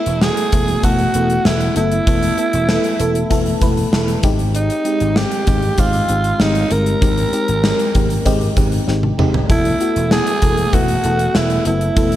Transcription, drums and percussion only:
0.06 closed hi-hat
0.21 snare
0.37 closed hi-hat
0.52 kick, closed hi-hat
0.68 closed hi-hat
0.83 kick, closed hi-hat
0.99 closed hi-hat
1.14 closed hi-hat
1.30 closed hi-hat
1.45 snare
1.60 closed hi-hat
1.76 closed hi-hat
1.92 closed hi-hat
2.07 kick, closed hi-hat
2.23 closed hi-hat
2.38 closed hi-hat
2.53 closed hi-hat
2.69 snare
2.84 closed hi-hat
3.00 closed hi-hat
3.15 closed hi-hat
3.31 kick, closed hi-hat
3.46 closed hi-hat
3.61 kick, closed hi-hat
3.77 closed hi-hat
3.93 snare
4.08 closed hi-hat
4.23 kick, closed hi-hat
4.39 closed hi-hat
4.55 closed hi-hat
4.70 closed hi-hat
4.85 closed hi-hat
5.00 closed hi-hat
5.16 snare
5.31 closed hi-hat
5.47 kick, closed hi-hat
5.62 closed hi-hat
5.78 kick, closed hi-hat
5.93 closed hi-hat
6.09 closed hi-hat
6.24 closed hi-hat
6.40 snare
6.55 closed hi-hat
6.71 closed hi-hat
6.86 closed hi-hat
7.02 kick, closed hi-hat
7.17 closed hi-hat
7.33 closed hi-hat
7.48 closed hi-hat
7.64 snare
7.79 closed hi-hat
7.95 kick, closed hi-hat
8.10 closed hi-hat
8.26 kick, closed hi-hat
8.41 closed hi-hat
8.57 kick, closed hi-hat
8.72 closed hi-hat
8.88 snare
9.03 high tom
9.19 mid tom
9.34 floor tom
9.50 kick, closed hi-hat
9.65 closed hi-hat
9.80 closed hi-hat
9.96 closed hi-hat
10.11 snare
10.27 closed hi-hat
10.42 kick, closed hi-hat
10.57 closed hi-hat
10.73 kick, closed hi-hat
10.88 closed hi-hat
11.04 closed hi-hat
11.19 closed hi-hat
11.35 snare
11.50 closed hi-hat
11.65 closed hi-hat
11.81 closed hi-hat
11.96 kick, closed hi-hat
12.12 closed hi-hat

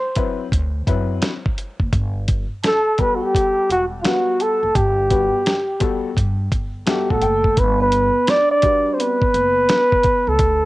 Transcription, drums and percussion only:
0.15 kick, closed hi-hat
0.52 kick, closed hi-hat
0.87 kick, closed hi-hat
1.22 snare, closed hi-hat
1.46 kick
1.58 closed hi-hat
1.80 kick
1.93 kick, closed hi-hat
2.28 kick, closed hi-hat
2.64 snare, closed hi-hat
2.98 kick, closed hi-hat
3.35 kick, closed hi-hat
3.70 closed hi-hat
4.05 snare, closed hi-hat
4.40 closed hi-hat
4.75 kick, closed hi-hat
5.11 kick, closed hi-hat
5.46 snare, closed hi-hat
5.80 kick, closed hi-hat
6.17 kick, closed hi-hat
6.52 kick, closed hi-hat
6.87 snare, closed hi-hat
7.10 kick
7.21 closed hi-hat
7.44 kick
7.57 kick, closed hi-hat
7.92 closed hi-hat
8.27 snare, closed hi-hat
8.62 kick, closed hi-hat
9.00 closed hi-hat
9.22 kick
9.34 closed hi-hat
9.69 snare, closed hi-hat
9.92 kick
10.04 kick, closed hi-hat
10.39 kick, closed hi-hat

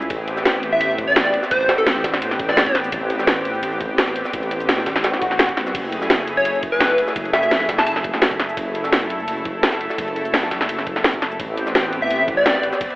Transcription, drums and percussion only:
0.02 cabasa
0.10 kick, closed hi-hat, ride, cabasa
0.28 closed hi-hat, ride, cabasa
0.37 snare, cabasa
0.45 snare, closed hi-hat, ride, cabasa
0.63 closed hi-hat, ride
0.72 cabasa
0.81 closed hi-hat, ride, cabasa
0.90 cabasa
0.98 kick, closed hi-hat, ride
1.16 snare, closed hi-hat, ride, cabasa
1.25 snare, closed hi-hat
1.34 closed hi-hat, ride
1.43 snare, cabasa
1.51 kick, closed hi-hat, ride, cabasa
1.61 ride
1.69 snare, closed hi-hat, ride, cabasa
1.78 closed hi-hat, cabasa
1.87 snare, closed hi-hat, ride, cabasa
1.96 snare
2.04 kick, snare, open hi-hat, ride
2.13 snare, closed hi-hat, cabasa
2.22 closed hi-hat, ride, cabasa
2.31 snare, cabasa
2.39 kick, closed hi-hat, ride
2.49 snare
2.57 snare, closed hi-hat, ride, cabasa
2.66 kick, closed hi-hat
2.75 snare, closed hi-hat, ride
2.84 cabasa
2.92 kick, closed hi-hat, ride, cabasa
3.10 closed hi-hat, ride, cabasa
3.19 snare, cabasa
3.27 snare, closed hi-hat, ride, cabasa
3.45 closed hi-hat, ride
3.55 cabasa
3.63 closed hi-hat, ride, cabasa
3.72 cabasa
3.81 kick, closed hi-hat, ride
3.98 snare, closed hi-hat, ride, cabasa
4.08 snare, closed hi-hat
4.16 closed hi-hat, ride
4.25 snare, cabasa
4.33 kick, closed hi-hat, ride, cabasa
4.43 ride
4.51 closed hi-hat, ride, cabasa
4.60 closed hi-hat, cabasa
4.69 snare, closed hi-hat, open hi-hat, cabasa
4.78 snare
4.86 kick, snare, open hi-hat, ride
4.96 snare, closed hi-hat, cabasa
5.04 snare, closed hi-hat, ride, cabasa
5.14 snare, cabasa
5.22 kick, closed hi-hat, ride
5.31 snare
5.39 snare, closed hi-hat, ride, cabasa
5.49 kick, closed hi-hat, cabasa
5.57 snare, closed hi-hat, ride
5.67 snare, cabasa
5.75 kick, closed hi-hat, crash, ride, cabasa
5.92 closed hi-hat, ride, cabasa
6.02 snare, cabasa
6.10 snare, closed hi-hat, ride, cabasa
6.27 closed hi-hat, ride
6.37 cabasa
6.45 closed hi-hat, ride, cabasa
6.54 cabasa
6.63 kick, closed hi-hat, ride
6.80 snare, closed hi-hat, ride, cabasa
6.90 snare, closed hi-hat
6.98 closed hi-hat, ride
7.08 snare, cabasa
7.16 kick, closed hi-hat, ride, cabasa
7.25 ride
7.33 snare, closed hi-hat, ride, cabasa
7.43 closed hi-hat, cabasa
7.51 snare, closed hi-hat, ride, cabasa
7.60 snare
7.69 kick, snare, open hi-hat, ride
7.78 snare, closed hi-hat, cabasa
7.87 closed hi-hat, ride, cabasa
7.96 snare, cabasa
8.04 kick, closed hi-hat, ride
8.13 snare
8.22 snare, closed hi-hat, ride, cabasa
8.31 kick, closed hi-hat
8.39 snare, closed hi-hat, ride
8.49 cabasa
8.57 kick, closed hi-hat, ride, cabasa
8.75 closed hi-hat, ride, cabasa
8.84 snare, cabasa
8.92 snare, closed hi-hat, ride, cabasa
9.10 closed hi-hat, ride
9.20 cabasa
9.28 closed hi-hat, ride, cabasa
9.37 cabasa
9.45 kick, closed hi-hat, ride
9.63 snare, closed hi-hat, ride, cabasa
9.73 snare, closed hi-hat
9.81 closed hi-hat, ride
9.90 snare, cabasa
9.98 kick, closed hi-hat, ride, cabasa
10.08 ride
10.16 closed hi-hat, ride, cabasa
10.25 closed hi-hat, cabasa
10.34 snare, closed hi-hat, open hi-hat, cabasa
10.43 snare
10.51 kick, snare, open hi-hat, ride
10.61 snare, closed hi-hat, cabasa
10.69 closed hi-hat, ride, cabasa
10.79 snare, cabasa
10.87 kick, closed hi-hat, ride
10.96 snare
11.04 snare, closed hi-hat, ride, cabasa
11.14 kick, closed hi-hat
11.22 snare, closed hi-hat, ride
11.31 cabasa
11.40 kick, closed hi-hat, ride, cabasa
11.57 closed hi-hat, ride, cabasa
11.67 snare, cabasa
11.75 snare, closed hi-hat, ride, cabasa
11.93 closed hi-hat, ride
12.02 cabasa
12.11 closed hi-hat, ride, cabasa
12.20 cabasa
12.28 kick, closed hi-hat, ride
12.46 snare, closed hi-hat, ride, cabasa
12.55 snare, closed hi-hat
12.63 closed hi-hat, ride
12.73 snare, cabasa
12.81 kick, closed hi-hat, ride, cabasa
12.90 ride

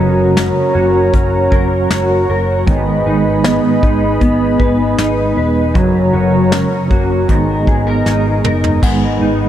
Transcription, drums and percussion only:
0.37 snare, closed hi-hat
1.13 kick, closed hi-hat
1.52 kick
1.90 snare, closed hi-hat
2.67 kick, closed hi-hat
3.44 snare, closed hi-hat
3.83 kick
4.21 kick, closed hi-hat
4.60 kick
4.98 snare, closed hi-hat
5.75 kick, closed hi-hat
6.52 snare, closed hi-hat
6.91 kick
7.29 kick, closed hi-hat
7.67 kick
8.06 snare
8.44 mid tom
8.64 floor tom
8.83 kick, crash

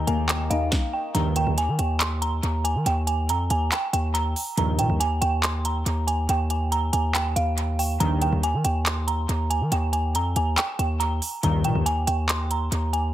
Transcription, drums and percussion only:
0.07 closed hi-hat
0.29 clap, closed hi-hat
0.51 closed hi-hat
0.72 kick, snare
1.15 closed hi-hat
1.36 closed hi-hat
1.58 closed hi-hat
1.79 closed hi-hat
2.00 clap, closed hi-hat
2.22 closed hi-hat
2.43 closed hi-hat
2.65 closed hi-hat
2.86 closed hi-hat
3.07 closed hi-hat
3.29 closed hi-hat
3.50 closed hi-hat
3.72 clap, closed hi-hat
3.93 closed hi-hat
4.15 closed hi-hat
4.36 open hi-hat
4.57 closed hi-hat
4.79 closed hi-hat
5.01 closed hi-hat
5.22 closed hi-hat
5.43 clap, closed hi-hat
5.65 closed hi-hat
5.86 closed hi-hat
6.08 closed hi-hat
6.29 closed hi-hat
6.50 closed hi-hat
6.72 closed hi-hat
6.93 closed hi-hat
7.15 clap, closed hi-hat
7.36 closed hi-hat
7.58 closed hi-hat
7.79 open hi-hat
8.00 closed hi-hat
8.21 closed hi-hat
8.43 closed hi-hat
8.65 closed hi-hat
8.86 clap, closed hi-hat
9.08 closed hi-hat
9.29 closed hi-hat
9.51 closed hi-hat
9.72 closed hi-hat
9.93 closed hi-hat
10.15 closed hi-hat
10.36 closed hi-hat
10.58 clap, closed hi-hat
10.79 closed hi-hat
11.00 closed hi-hat
11.22 open hi-hat
11.43 closed hi-hat
11.64 closed hi-hat
11.86 closed hi-hat
12.07 closed hi-hat
12.29 clap, closed hi-hat
12.51 closed hi-hat
12.72 closed hi-hat
12.93 closed hi-hat

